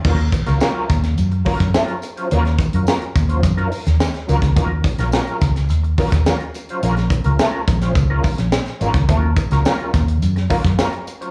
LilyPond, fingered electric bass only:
\new Staff \with { instrumentName = "Fingered electric bass" } { \clef bass \time 4/4 \key ees \dorian \tempo 4 = 106 ees,8 r16 des,16 r8 ees,8 ges,8 r16 ges,16 r4 | ees,8 r16 ges,16 r8 ees,8 ges,8 r16 ees,16 r8 des,16 des,16 | ees,8 r16 bes,,16 r8 des,8 ees,8 r16 ees,16 r4 | bes,,8 r16 des,16 r8 bes,,8 des,8 r16 bes,,16 r8 aes,,16 des,16 |
ees,8 r16 des,16 r8 ees,8 ges,8 r16 ges,16 r4 | }